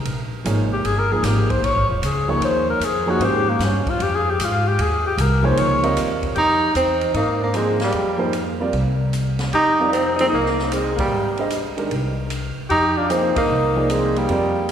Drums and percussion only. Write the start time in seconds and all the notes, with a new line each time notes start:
0.05 ride
0.45 hi-hat pedal, ride
0.85 ride
1.24 snare, hi-hat pedal, ride
1.50 kick, ride
1.64 ride
2.03 hi-hat pedal, ride
2.42 ride
2.81 hi-hat pedal, ride
3.21 ride
3.60 snare, hi-hat pedal, ride
3.87 kick, ride
4.00 ride
4.40 hi-hat pedal, ride
4.79 ride
5.18 hi-hat pedal, ride
5.57 ride
5.83 ride
5.97 hi-hat pedal, ride
6.23 kick, ride
6.35 ride
6.75 hi-hat pedal, ride
7.01 ride
7.14 ride
7.54 hi-hat pedal, ride
7.80 snare, ride
7.92 ride
8.33 hi-hat pedal, ride
8.73 ride
9.13 hi-hat pedal, ride
9.39 snare, ride
9.53 ride
9.93 hi-hat pedal, ride
10.19 ride
10.46 snare
10.59 snare
10.72 hi-hat pedal, ride
10.98 kick, ride
11.37 ride
11.50 hi-hat pedal, ride
11.78 ride
11.91 ride
12.30 hi-hat pedal, ride
12.70 ride
13.10 hi-hat pedal, ride
13.36 kick, ride
13.90 hi-hat pedal, ride
14.16 ride
14.29 ride
14.69 hi-hat pedal, ride